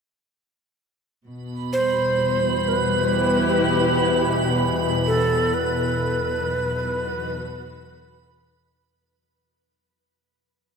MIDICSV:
0, 0, Header, 1, 5, 480
1, 0, Start_track
1, 0, Key_signature, 1, "minor"
1, 0, Tempo, 952381
1, 635, Time_signature, 4, 2, 24, 8
1, 5424, End_track
2, 0, Start_track
2, 0, Title_t, "Ambient pad"
2, 0, Program_c, 0, 92
2, 632, Note_on_c, 0, 83, 70
2, 4483, Note_off_c, 0, 83, 0
2, 5424, End_track
3, 0, Start_track
3, 0, Title_t, "Shakuhachi"
3, 0, Program_c, 1, 77
3, 871, Note_on_c, 1, 72, 83
3, 1352, Note_on_c, 1, 71, 81
3, 1360, Note_off_c, 1, 72, 0
3, 2313, Note_off_c, 1, 71, 0
3, 2553, Note_on_c, 1, 69, 88
3, 2792, Note_on_c, 1, 71, 100
3, 2799, Note_off_c, 1, 69, 0
3, 4233, Note_off_c, 1, 71, 0
3, 5424, End_track
4, 0, Start_track
4, 0, Title_t, "Cello section"
4, 0, Program_c, 2, 48
4, 631, Note_on_c, 2, 47, 66
4, 883, Note_on_c, 2, 55, 47
4, 1487, Note_on_c, 2, 67, 69
4, 1490, Note_on_c, 2, 64, 69
4, 2543, Note_on_c, 2, 40, 72
4, 2549, Note_off_c, 2, 67, 0
4, 2550, Note_off_c, 2, 64, 0
4, 2553, Note_off_c, 2, 55, 0
4, 2990, Note_on_c, 2, 63, 66
4, 3096, Note_on_c, 2, 54, 64
4, 3415, Note_on_c, 2, 66, 72
4, 4468, Note_off_c, 2, 63, 0
4, 4469, Note_off_c, 2, 40, 0
4, 4469, Note_off_c, 2, 54, 0
4, 4472, Note_off_c, 2, 47, 0
4, 4472, Note_off_c, 2, 66, 0
4, 5424, End_track
5, 0, Start_track
5, 0, Title_t, "Synth drone"
5, 0, Program_c, 3, 95
5, 629, Note_on_c, 3, 47, 64
5, 633, Note_on_c, 3, 40, 65
5, 4520, Note_off_c, 3, 47, 0
5, 4522, Note_off_c, 3, 40, 0
5, 5424, End_track
0, 0, End_of_file